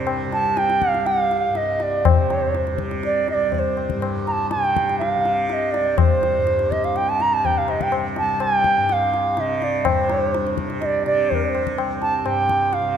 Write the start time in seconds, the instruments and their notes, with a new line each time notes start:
Already playing: tanpura C2 G2 C3
0.07 tabla na
0.27 tanpura C3
0.32 bansuri A5, tabla te
0.57 bansuri G5, tabla te
0.70 tabla te
0.82 tabla ke
0.88 tanpura C2, bansuri F5
0.94 tabla te
1.06 bansuri F5, tabla te
1.31 tabla te
1.48 tanpura G2
1.55 bansuri D#5, tabla te
1.80 bansuri D5, tabla te
2.05 bansuri C5, tabla na, tabla ge
2.10 tanpura C3
2.30 tabla te
2.55 tabla te
2.67 tabla te
2.73 tanpura C3
2.78 tabla ke
2.91 tabla te
3.03 bansuri D5, tabla te
3.28 bansuri D#5, tabla te
3.34 tanpura C2, bansuri D5
3.52 bansuri D5, tabla tin, tabla ge
3.59 bansuri C5
3.77 tabla na
3.90 tabla ke
3.94 tanpura G2
4.02 tabla na
4.27 bansuri A#5, tabla te
4.32 bansuri A5
4.51 bansuri G5, tabla te
4.56 tanpura C3
4.64 tabla te
4.76 tabla ke
4.89 tabla te
4.99 bansuri F5, tabla te
5.17 tanpura C3
5.25 tabla te
5.48 bansuri F5, tabla te
5.53 bansuri D#5
5.72 bansuri D5, tabla te
5.78 tanpura C2
5.98 bansuri C5, tabla na, tabla ge
6.23 tabla te
6.37 tanpura G2
6.47 tabla te
6.59 tabla te
6.71 bansuri D#5, tabla ke
6.84 bansuri F5, tabla te
6.96 tanpura C3, bansuri G5, tabla te
7.09 bansuri A5
7.20 bansuri A#5, tabla te
7.33 bansuri A5
7.45 bansuri G5, tabla tin, tabla ge
7.58 tanpura C3, bansuri F5
7.68 bansuri D#5, tabla na
7.81 bansuri G5, tabla ke
7.92 tabla na
8.16 bansuri A5, tabla te
8.21 tanpura C2
8.40 bansuri G5, tabla na
8.64 tabla ke
8.77 tanpura G2
8.89 bansuri F5, tabla te
9.14 tabla te
9.37 tanpura C3, bansuri D#5, tabla te
9.62 bansuri D5, tabla te
9.85 tanpura G2, tabla na, tabla ge
9.89 bansuri C5
10.10 tabla te
10.35 tabla te
10.46 tanpura C3, tabla te
10.58 tabla ke
10.70 tabla te
10.81 bansuri D#5, tabla te
10.86 bansuri D5
11.06 tanpura C3, bansuri D5, tabla te
11.30 bansuri C5, tabla tin, tabla ge
11.35 bansuri A#4
11.44 bansuri D5
11.49 bansuri C5
11.55 tabla na
11.63 tanpura C2, tabla ke
11.78 tabla na
12.02 bansuri A5, tabla te
12.19 bansuri A5
12.24 tanpura G2, bansuri G5, tabla na
12.49 tabla ke
12.73 bansuri F5, tabla te
12.82 tanpura C3